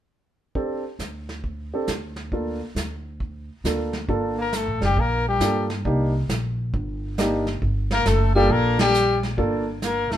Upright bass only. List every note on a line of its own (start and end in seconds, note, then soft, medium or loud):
0.99 1.71 D2 medium
1.88 2.60 D2 medium
2.75 3.48 D2 medium
3.64 4.05 D2 medium
4.09 4.64 G1 medium
4.67 4.80 A1 medium
4.81 4.95 F#1 medium
4.97 5.38 A#1 medium
5.40 5.82 G2 medium
5.85 6.26 C2 medium
6.29 6.70 A#1 medium
6.74 7.58 G1 medium
7.62 8.03 G1 medium
8.06 8.47 F#1 medium
8.50 9.34 A#1 medium
9.38 10.07 G1 medium
10.11 10.17 F#1 medium